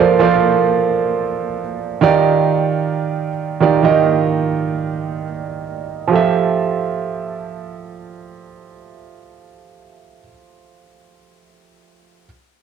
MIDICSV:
0, 0, Header, 1, 2, 480
1, 0, Start_track
1, 0, Key_signature, -1, "major"
1, 0, Tempo, 500000
1, 12119, End_track
2, 0, Start_track
2, 0, Title_t, "Grand piano"
2, 0, Program_c, 0, 0
2, 0, Control_c, 0, 64, 127
2, 0, Note_on_c, 0, 53, 74
2, 0, Note_on_c, 0, 65, 72
2, 0, Note_on_c, 0, 69, 72
2, 0, Note_on_c, 0, 70, 68
2, 0, Note_on_c, 0, 72, 73
2, 0, Note_on_c, 0, 74, 85
2, 136, Note_off_c, 0, 53, 0
2, 139, Note_off_c, 0, 65, 0
2, 140, Note_off_c, 0, 69, 0
2, 142, Note_off_c, 0, 70, 0
2, 145, Note_off_c, 0, 72, 0
2, 146, Note_off_c, 0, 74, 0
2, 185, Note_on_c, 0, 53, 86
2, 190, Note_on_c, 0, 65, 77
2, 193, Note_on_c, 0, 69, 80
2, 197, Note_on_c, 0, 70, 77
2, 201, Note_on_c, 0, 72, 78
2, 206, Note_on_c, 0, 74, 93
2, 1530, Note_off_c, 0, 53, 0
2, 1533, Note_off_c, 0, 65, 0
2, 1534, Note_off_c, 0, 69, 0
2, 1536, Note_off_c, 0, 70, 0
2, 1538, Note_off_c, 0, 72, 0
2, 1541, Note_off_c, 0, 74, 0
2, 1930, Note_on_c, 0, 51, 91
2, 1936, Note_on_c, 0, 63, 82
2, 1940, Note_on_c, 0, 65, 85
2, 1945, Control_c, 0, 64, 0
2, 1946, Note_on_c, 0, 67, 82
2, 1951, Note_on_c, 0, 74, 104
2, 2091, Control_c, 0, 64, 127
2, 3153, Note_off_c, 0, 51, 0
2, 3156, Note_off_c, 0, 63, 0
2, 3158, Note_off_c, 0, 65, 0
2, 3161, Note_off_c, 0, 67, 0
2, 3163, Note_off_c, 0, 74, 0
2, 3459, Note_on_c, 0, 51, 75
2, 3463, Note_on_c, 0, 63, 65
2, 3469, Note_on_c, 0, 65, 69
2, 3473, Note_on_c, 0, 67, 72
2, 3479, Note_on_c, 0, 74, 83
2, 3628, Note_off_c, 0, 51, 0
2, 3630, Note_off_c, 0, 63, 0
2, 3632, Note_off_c, 0, 65, 0
2, 3634, Note_off_c, 0, 67, 0
2, 3637, Note_off_c, 0, 74, 0
2, 3673, Note_on_c, 0, 51, 85
2, 3679, Note_on_c, 0, 63, 72
2, 3685, Note_on_c, 0, 65, 74
2, 3690, Note_on_c, 0, 67, 77
2, 3694, Note_on_c, 0, 75, 89
2, 5020, Note_off_c, 0, 51, 0
2, 5023, Note_off_c, 0, 63, 0
2, 5026, Note_off_c, 0, 65, 0
2, 5028, Note_off_c, 0, 67, 0
2, 5030, Note_off_c, 0, 75, 0
2, 5832, Note_on_c, 0, 53, 70
2, 5850, Note_on_c, 0, 65, 61
2, 5870, Note_on_c, 0, 67, 64
2, 5871, Control_c, 0, 64, 0
2, 5889, Note_on_c, 0, 69, 66
2, 5907, Note_on_c, 0, 76, 79
2, 6029, Control_c, 0, 64, 127
2, 9796, Note_off_c, 0, 53, 0
2, 9815, Note_off_c, 0, 65, 0
2, 9834, Note_off_c, 0, 67, 0
2, 9854, Note_off_c, 0, 69, 0
2, 9871, Note_off_c, 0, 76, 0
2, 11763, Control_c, 0, 64, 0
2, 12119, End_track
0, 0, End_of_file